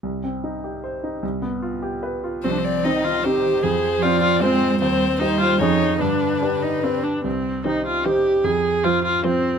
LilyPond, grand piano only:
\new Staff \with { instrumentName = "Grand piano" } { \time 3/4 \key c \minor \tempo 4 = 151 c,8 c'8 ees'8 g'8 c''8 ees'8 | c,8 b8 f'8 g'8 b'8 f'8 | c,4 <c' ees' c''>4 <c' ees' c''>4 | f,4 <c' f' c''>4 <c' f' c''>4 |
ees,4 <ees' g' c''>4 <f, des' aes' des''>4 | g,4 <d' g' b'>4 <d' g' b'>4 | c,4 <ees' g' c''>4 <ees' g' c''>4 | f,4 <f' c''>4 <f' c''>4 | }